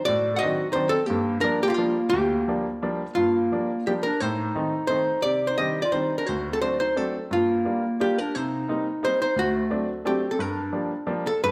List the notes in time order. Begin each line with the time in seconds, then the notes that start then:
0.05 A2 F#4 D5
0.34 F#4 A4 F#5
0.39 D4 D#5
0.43 D#3 F#3 C4
0.71 D#3 F#3 D#4 C5
0.75 C4 D4
0.89 C4 A4
1.06 G2 A#3 G4
1.40 F3 G3 A#3 D4 A#4
1.44 D4
1.63 A#3 G4
1.67 A#3 F4 G4
1.74 F3 A#3 F4
1.78 G3 D4
2.10 D2 A#3 G4
2.48 F3 G3 A#3 D4
2.82 F3 G3 A#3 D4
3.15 G2 A#3 F4
3.52 F3 G3 A#3 D4
3.87 F3 G3 A#3 D4 G4
4.03 D4 A#4
4.20 A2 D#4 C5
4.55 D#3 A3 C4 D#4
4.87 D#3 A3 C4 D#4 C5
5.22 C3 G4 D5
5.47 D#4 C5
5.58 D#3 G3 C4 D4 G4 D#5
5.82 F4 D5
5.92 D#3 G3 C4 D4 D#4 C5
6.18 D4 A#4
6.26 D2 F#4 C5
6.51 C4 A4
6.61 F#3 A3 C4 D4 F#4 C5
6.80 D#4 C5
6.96 F#3 A3 C4 D4 A4
7.31 G2 A#3 F4
7.65 G3 A#3 D4 F4
8.00 G3 A#3 D4 F4 G4
8.18 D4 A#4
8.35 C3 D#4 C5
8.68 G3 A#3 C4 D#4
9.03 G3 A#3 C4 D#4 C5
9.22 D#4 C5
9.36 D2 A3 F#4
9.70 F#3 A3 C4 D4
10.05 F#3 A3 C4 D4 G4
10.31 C4 A4
10.39 G2 D4 A#4
10.72 F3 G3 A#3 D4
11.06 F3 G3 A#3 D4
11.27 A4
11.44 G2 B4